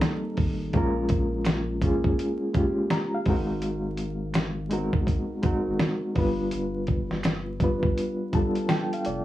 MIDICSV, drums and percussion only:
0, 0, Header, 1, 2, 480
1, 0, Start_track
1, 0, Tempo, 722892
1, 489, Time_signature, 4, 2, 24, 8
1, 6139, End_track
2, 0, Start_track
2, 0, Title_t, "Drums"
2, 9, Note_on_c, 9, 38, 95
2, 10, Note_on_c, 9, 26, 70
2, 13, Note_on_c, 9, 42, 70
2, 76, Note_off_c, 9, 38, 0
2, 77, Note_off_c, 9, 26, 0
2, 80, Note_off_c, 9, 42, 0
2, 245, Note_on_c, 9, 46, 45
2, 249, Note_on_c, 9, 36, 92
2, 311, Note_off_c, 9, 46, 0
2, 315, Note_off_c, 9, 36, 0
2, 485, Note_on_c, 9, 42, 79
2, 488, Note_on_c, 9, 36, 113
2, 551, Note_off_c, 9, 42, 0
2, 555, Note_off_c, 9, 36, 0
2, 721, Note_on_c, 9, 42, 66
2, 729, Note_on_c, 9, 36, 89
2, 788, Note_off_c, 9, 42, 0
2, 795, Note_off_c, 9, 36, 0
2, 960, Note_on_c, 9, 26, 57
2, 965, Note_on_c, 9, 42, 91
2, 973, Note_on_c, 9, 38, 108
2, 1027, Note_off_c, 9, 26, 0
2, 1031, Note_off_c, 9, 42, 0
2, 1039, Note_off_c, 9, 38, 0
2, 1206, Note_on_c, 9, 36, 87
2, 1209, Note_on_c, 9, 42, 73
2, 1273, Note_off_c, 9, 36, 0
2, 1275, Note_off_c, 9, 42, 0
2, 1357, Note_on_c, 9, 36, 86
2, 1423, Note_off_c, 9, 36, 0
2, 1455, Note_on_c, 9, 42, 82
2, 1522, Note_off_c, 9, 42, 0
2, 1689, Note_on_c, 9, 42, 54
2, 1691, Note_on_c, 9, 36, 95
2, 1756, Note_off_c, 9, 42, 0
2, 1758, Note_off_c, 9, 36, 0
2, 1929, Note_on_c, 9, 38, 98
2, 1932, Note_on_c, 9, 26, 76
2, 1933, Note_on_c, 9, 42, 69
2, 1996, Note_off_c, 9, 38, 0
2, 1998, Note_off_c, 9, 26, 0
2, 2000, Note_off_c, 9, 42, 0
2, 2165, Note_on_c, 9, 46, 47
2, 2168, Note_on_c, 9, 36, 101
2, 2231, Note_off_c, 9, 46, 0
2, 2234, Note_off_c, 9, 36, 0
2, 2405, Note_on_c, 9, 42, 82
2, 2471, Note_off_c, 9, 42, 0
2, 2640, Note_on_c, 9, 42, 66
2, 2706, Note_off_c, 9, 42, 0
2, 2881, Note_on_c, 9, 26, 59
2, 2883, Note_on_c, 9, 42, 94
2, 2891, Note_on_c, 9, 38, 113
2, 2947, Note_off_c, 9, 26, 0
2, 2949, Note_off_c, 9, 42, 0
2, 2958, Note_off_c, 9, 38, 0
2, 3127, Note_on_c, 9, 42, 73
2, 3193, Note_off_c, 9, 42, 0
2, 3276, Note_on_c, 9, 36, 95
2, 3342, Note_off_c, 9, 36, 0
2, 3368, Note_on_c, 9, 36, 89
2, 3374, Note_on_c, 9, 42, 85
2, 3434, Note_off_c, 9, 36, 0
2, 3441, Note_off_c, 9, 42, 0
2, 3606, Note_on_c, 9, 42, 56
2, 3610, Note_on_c, 9, 36, 89
2, 3672, Note_off_c, 9, 42, 0
2, 3676, Note_off_c, 9, 36, 0
2, 3848, Note_on_c, 9, 38, 100
2, 3852, Note_on_c, 9, 42, 71
2, 3853, Note_on_c, 9, 26, 69
2, 3914, Note_off_c, 9, 38, 0
2, 3918, Note_off_c, 9, 42, 0
2, 3919, Note_off_c, 9, 26, 0
2, 4085, Note_on_c, 9, 46, 44
2, 4088, Note_on_c, 9, 36, 98
2, 4152, Note_off_c, 9, 46, 0
2, 4154, Note_off_c, 9, 36, 0
2, 4322, Note_on_c, 9, 42, 82
2, 4389, Note_off_c, 9, 42, 0
2, 4559, Note_on_c, 9, 42, 68
2, 4567, Note_on_c, 9, 36, 83
2, 4625, Note_off_c, 9, 42, 0
2, 4634, Note_off_c, 9, 36, 0
2, 4718, Note_on_c, 9, 38, 37
2, 4785, Note_off_c, 9, 38, 0
2, 4801, Note_on_c, 9, 26, 59
2, 4805, Note_on_c, 9, 42, 90
2, 4813, Note_on_c, 9, 38, 102
2, 4867, Note_off_c, 9, 26, 0
2, 4871, Note_off_c, 9, 42, 0
2, 4879, Note_off_c, 9, 38, 0
2, 5046, Note_on_c, 9, 36, 92
2, 5048, Note_on_c, 9, 42, 77
2, 5113, Note_off_c, 9, 36, 0
2, 5114, Note_off_c, 9, 42, 0
2, 5198, Note_on_c, 9, 36, 89
2, 5264, Note_off_c, 9, 36, 0
2, 5296, Note_on_c, 9, 42, 82
2, 5362, Note_off_c, 9, 42, 0
2, 5531, Note_on_c, 9, 42, 55
2, 5532, Note_on_c, 9, 36, 90
2, 5597, Note_off_c, 9, 42, 0
2, 5598, Note_off_c, 9, 36, 0
2, 5681, Note_on_c, 9, 42, 53
2, 5747, Note_off_c, 9, 42, 0
2, 5771, Note_on_c, 9, 38, 102
2, 5775, Note_on_c, 9, 26, 73
2, 5775, Note_on_c, 9, 42, 71
2, 5837, Note_off_c, 9, 38, 0
2, 5841, Note_off_c, 9, 26, 0
2, 5841, Note_off_c, 9, 42, 0
2, 5930, Note_on_c, 9, 42, 55
2, 5996, Note_off_c, 9, 42, 0
2, 6008, Note_on_c, 9, 42, 62
2, 6074, Note_off_c, 9, 42, 0
2, 6139, End_track
0, 0, End_of_file